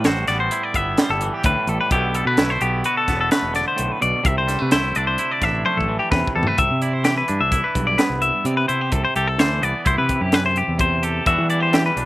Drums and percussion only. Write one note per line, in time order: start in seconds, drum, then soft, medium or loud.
0.04 snare loud
0.04 closed hi-hat medium
0.27 snare soft
0.27 closed hi-hat medium
0.51 closed hi-hat medium
0.74 kick medium
0.74 closed hi-hat medium
0.98 snare loud
0.98 closed hi-hat medium
1.21 closed hi-hat medium
1.44 kick loud
1.44 closed hi-hat medium
1.67 closed hi-hat medium
1.91 kick medium
1.91 closed hi-hat medium
2.14 closed hi-hat medium
2.37 snare loud
2.37 closed hi-hat medium
2.61 closed hi-hat medium
2.84 closed hi-hat medium
3.08 kick medium
3.08 snare soft
3.08 closed hi-hat medium
3.31 snare loud
3.31 closed hi-hat medium
3.55 snare soft
3.55 closed hi-hat medium
3.78 closed hi-hat medium
4.02 closed hi-hat medium
4.25 kick loud
4.25 closed hi-hat medium
4.48 snare soft
4.48 closed hi-hat medium
4.71 snare loud
4.71 closed hi-hat medium
4.95 closed hi-hat medium
5.18 closed hi-hat medium
5.42 kick medium
5.42 snare soft
5.42 closed hi-hat medium
5.65 high tom medium
5.81 kick medium
6.12 kick loud
6.12 snare medium
6.27 kick medium
6.43 floor tom medium
6.58 kick medium
6.58 closed hi-hat medium
6.82 closed hi-hat medium
7.04 snare medium
7.04 closed hi-hat medium
7.28 closed hi-hat medium
7.52 kick loud
7.52 closed hi-hat medium
7.75 kick medium
7.75 closed hi-hat medium
7.98 snare medium
7.98 closed hi-hat medium
8.22 closed hi-hat medium
8.45 closed hi-hat medium
8.69 closed hi-hat medium
8.92 kick medium
8.92 closed hi-hat medium
9.16 closed hi-hat medium
9.39 snare loud
9.39 closed hi-hat medium
9.63 closed hi-hat medium
9.86 kick loud
9.86 closed hi-hat medium
10.09 kick medium
10.09 closed hi-hat medium
10.32 snare medium
10.32 closed hi-hat medium
10.56 closed hi-hat medium
10.79 kick loud
10.79 closed hi-hat medium
11.03 closed hi-hat medium
11.26 kick loud
11.26 closed hi-hat medium
11.50 closed hi-hat medium
11.73 snare loud
11.73 closed hi-hat medium
11.97 closed hi-hat medium